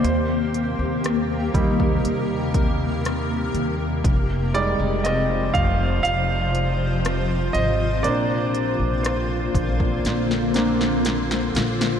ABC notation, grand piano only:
X:1
M:4/4
L:1/8
Q:1/4=60
K:Eb
V:1 name="Grand piano"
c4 z4 | z d e f f3 e | d2 c4- c z |]
V:2 name="Grand piano"
z3 [G,B,E]3 z2 | z [G,A,E]3 z4 | [B,CD] z4 [B,CD] z2 |]